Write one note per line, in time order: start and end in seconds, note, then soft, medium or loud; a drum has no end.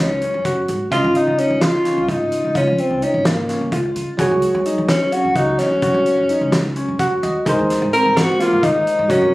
0.00 0.23 C#2 medium
0.00 0.87 F#3 medium
0.00 0.69 C#4 medium
0.00 0.14 D#4 medium
0.00 0.87 F#4 medium
0.00 0.88 G#4 medium
0.00 0.89 C#5 medium
0.22 0.41 C#4 medium
0.22 closed hi-hat medium
0.34 0.60 F#2 medium
0.45 0.84 F#4 medium
0.45 kick medium
0.45 closed hi-hat medium
0.68 0.78 G#2 medium
0.68 closed hi-hat medium
0.91 1.01 C#2 medium
0.91 4.14 C#3 medium
0.91 4.15 C#4 medium
0.91 1.30 F4 medium
0.91 1.18 F4 loud
0.91 4.16 F4 medium
0.91 4.16 D#5 medium
0.91 kick medium
0.91 closed hi-hat medium
1.04 1.13 G#1 medium
1.15 1.41 D#4 loud
1.15 closed hi-hat medium
1.27 1.36 C#3 medium
1.38 1.63 C#4 medium
1.38 1.77 D#4 medium
1.38 closed hi-hat medium
1.50 1.68 C#3 medium
1.61 2.11 F4 loud
1.61 snare loud
1.61 closed hi-hat medium
1.85 2.04 C#4 medium
1.85 snare soft
1.85 closed hi-hat medium
1.97 2.06 C#2 medium
2.08 2.26 G#1 medium
2.08 2.56 D#4 medium
2.08 2.47 F4 medium
2.08 kick loud
2.08 closed hi-hat medium
2.32 closed hi-hat medium
2.44 2.53 C2 medium
2.55 2.64 C#2 medium
2.55 2.81 C#4 medium
2.55 2.94 F4 medium
2.55 kick loud
2.55 closed hi-hat medium
2.67 2.76 F2 medium
2.78 3.04 C4 medium
2.78 closed hi-hat medium
2.90 2.99 C#2 medium
3.02 3.28 C#4 medium
3.02 3.41 D#4 medium
3.02 closed hi-hat medium
3.14 3.50 G#1 medium
3.25 3.73 A#3 medium
3.25 snare loud
3.25 closed hi-hat medium
3.49 3.68 C#4 medium
3.49 snare soft
3.49 closed hi-hat medium
3.61 3.88 C#2 medium
3.72 4.11 F4 medium
3.72 kick loud
3.72 closed hi-hat medium
3.96 4.05 C#3 medium
3.96 closed hi-hat medium
4.17 4.28 F#2 medium
4.17 7.41 F#3 medium
4.17 7.42 F#4 medium
4.17 4.58 F#4 medium
4.17 7.43 G#4 medium
4.17 7.43 C#5 medium
4.17 kick loud
4.17 closed hi-hat medium
4.31 4.40 C#2 medium
4.42 closed hi-hat medium
4.55 4.63 F#3 medium
4.65 5.04 D#4 medium
4.65 closed hi-hat medium
4.78 4.96 F#3 medium
4.88 5.14 C#4 medium
4.88 snare loud
4.88 closed hi-hat medium
5.12 5.32 C#4 medium
5.12 5.38 F#4 loud
5.12 closed hi-hat medium
5.24 5.33 F#2 medium
5.35 5.54 C#2 medium
5.35 5.60 D#4 medium
5.35 5.74 F#4 medium
5.35 kick medium
5.35 closed hi-hat medium
5.59 6.76 C#4 medium
5.59 snare soft
5.59 closed hi-hat medium
5.71 5.80 D#2 medium
5.82 5.92 F#2 medium
5.82 6.21 F#4 medium
5.82 kick loud
5.82 closed hi-hat medium
5.94 6.03 C3 medium
6.06 closed hi-hat medium
6.18 6.27 F#2 medium
6.29 6.68 D#4 medium
6.29 closed hi-hat medium
6.41 6.77 C#2 medium
6.52 snare loud
6.52 closed hi-hat medium
6.76 6.96 C#4 medium
6.76 closed hi-hat medium
6.88 7.15 F#2 medium
6.99 7.38 F#4 medium
6.99 7.21 F#5 medium
6.99 kick loud
6.99 closed hi-hat medium
7.23 7.32 D#2 medium
7.23 7.45 D#5 medium
7.23 closed hi-hat medium
7.46 7.55 G#2 medium
7.46 9.06 G#3 medium
7.46 7.85 D#4 medium
7.46 9.07 G#4 medium
7.46 9.07 A#4 medium
7.46 9.08 C5 medium
7.46 kick loud
7.46 closed hi-hat medium
7.59 7.67 D#2 medium
7.70 snare soft
7.70 closed hi-hat medium
7.82 7.90 G#2 loud
7.93 8.32 C4 medium
7.93 8.19 A#4 loud
7.93 closed hi-hat medium
8.05 8.23 G#2 medium
8.17 8.41 F#4 loud
8.17 snare loud
8.17 closed hi-hat medium
8.39 8.59 A#3 medium
8.39 8.65 F4 loud
8.39 snare soft
8.39 closed hi-hat medium
8.52 8.61 G#2 medium
8.63 8.81 D#2 loud
8.63 9.01 D#4 medium
8.63 9.12 D#4 medium
8.63 kick loud
8.63 closed hi-hat medium
8.87 closed hi-hat medium
8.99 9.07 G#2 medium
9.08 9.19 F#2 loud
9.08 9.34 F#3 medium
9.08 9.34 C#4 medium
9.08 9.34 F#4 medium
9.08 9.34 A#4 medium
9.08 9.34 C#5 medium
9.08 kick loud
9.08 closed hi-hat medium
9.22 9.30 C3 loud